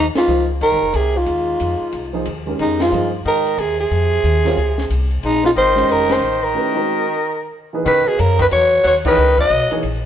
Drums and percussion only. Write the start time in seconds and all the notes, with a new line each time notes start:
0.15 snare, ride
0.28 hi-hat pedal
0.61 ride
0.94 hi-hat pedal, ride
1.26 ride
1.60 hi-hat pedal, ride
1.93 ride
2.25 hi-hat pedal, ride
2.59 ride
2.80 snare, ride
2.92 hi-hat pedal
3.26 ride
3.46 ride
3.58 hi-hat pedal, ride
3.80 ride
3.92 ride
4.24 hi-hat pedal, ride
4.45 snare, ride
4.57 ride
4.78 snare
4.90 hi-hat pedal, ride
5.11 ride
5.23 ride
5.44 snare
5.56 hi-hat pedal, ride
5.77 snare, ride
5.89 ride
6.10 snare, ride
6.22 hi-hat pedal
7.86 ride
8.19 hi-hat pedal, ride
8.39 kick, ride
8.51 ride
8.84 hi-hat pedal, ride
9.05 kick, crash
9.38 kick
9.50 hi-hat pedal, ride
9.71 ride
9.83 ride